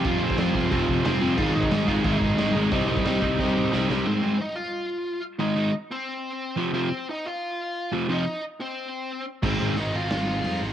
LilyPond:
<<
  \new Staff \with { instrumentName = "Lead electric guitar" } { \time 4/4 \key aes \major \tempo 4 = 179 <f' f''>8 <c' c''>2 r8 <c' c''>4 | <f' f''>8 <ees' ees''>4 <f' f''>8 <ees' ees''>4. r8 | <ees' ees''>8 <ees' ees''>2. r8 | <c' c''>4 <ees' ees''>8 <f' f''>2 r8 |
<ees' ees''>4 r8 <c' c''>2 r8 | <c' c''>4 <ees' ees''>8 <f' f''>2 r8 | <ees' ees''>4 r8 <c' c''>2 r8 | <c' c''>4 <ees' ees''>8 <f' f''>2 r8 | }
  \new Staff \with { instrumentName = "Distorted electric guitar" } { \time 4/4 \key aes \major <f c' f' aes'>4 <f c' f' aes'>8 <f c' f' aes'>8 <f c' f' aes'>4 <f c' f' aes'>8 <f c' f' aes'>8 | <aes c' ees' aes'>4 <aes c' ees' aes'>8 <aes c' ees' aes'>8 <aes c' ees' aes'>4 <aes c' ees' aes'>8 <aes c' ees' aes'>8 | <c g c' ees' g'>4 <c g c' ees' g'>8 <c g c' ees' g'>8 <c g c' ees' g'>4 <c g c' ees' g'>8 <c g c' ees' g'>8 | r1 |
r1 | r1 | r1 | <aes, ees aes c' ees'>4. <aes, ees aes c' ees'>2~ <aes, ees aes c' ees'>8 | }
  \new Staff \with { instrumentName = "Overdriven electric guitar" } { \clef bass \time 4/4 \key aes \major <f, c f>4 <f, c f>8 <f, c f>8 <f, c f>4 <f, c f>8 <f, c f>8 | <aes, ees aes>4 <aes, ees aes>8 <aes, ees aes>8 <aes, ees aes>4 <aes, ees aes>8 <aes, ees aes>8 | <c g c'>4 <c g c'>8 <c g c'>8 <c g c'>4 <c g c'>8 <c g c'>8 | <aes, ees aes>8 <aes, ees aes>8 r2. |
<aes, ees aes>8 <aes, ees aes>8 r2 r8 <f, c f>8 | <f, c f>8 r2. <f, c f>8 | <f, c f>8 r2. r8 | <aes, ees aes>8 <aes, ees aes>8 r2. | }
  \new Staff \with { instrumentName = "Overdriven electric guitar" } { \clef bass \time 4/4 \key aes \major <f, c f>4 <f, c f>8 <f, c f>8 <f, c f>4 <f, c f>8 <f, c f>8 | <aes, ees aes>4 <aes, ees aes>8 <aes, ees aes>8 <aes, ees aes>4 <aes, ees aes>8 <aes, ees aes>8 | <c g c'>4 <c g c'>8 <c g c'>8 <c g c'>4 <c g c'>8 <c g c'>8 | <aes, ees aes>8 <aes, ees aes>8 r2. |
<aes, ees aes>8 <aes, ees aes>8 r2 r8 <f, c f>8 | <f, c f>8 r2. <f, c f>8 | <f, c f>8 r2. r8 | <aes, ees aes>8 <aes, ees aes>8 r2. | }
  \new Staff \with { instrumentName = "Picked electric bass" } { \clef bass \time 4/4 \key aes \major f,,4 f,,8 f,,8 f,,8 f,,8 f,,8 f,,8 | aes,,8 aes,,8 aes,,8 aes,,8 aes,,8 aes,,8 aes,,8 aes,,8 | c,4 c,8 c,8 c,8 c,8 c,8 c,8 | r1 |
r1 | r1 | r1 | aes,,8 aes,,8 aes,,8 aes,,8 aes,,4 f,8 aes,,8 | }
  \new DrumStaff \with { instrumentName = "Drums" } \drummode { \time 4/4 <cymc bd>8. bd16 <cymc sn>8 bd8 <cymc bd>8 bd8 <cymc sn>4 | <cymc bd>8. bd16 <cymc sn>8 bd8 <cymc bd>8 bd8 <cymc sn>4 | <cymc bd>8. bd16 <cymc sn>8 bd8 <bd sn>4 sn8 sn8 | r4 r4 r4 r4 |
r4 r4 r4 r4 | r4 r4 r4 r4 | r4 r4 r4 r4 | <cymc bd>4 hho4 <hho sn>4 hho4 | }
>>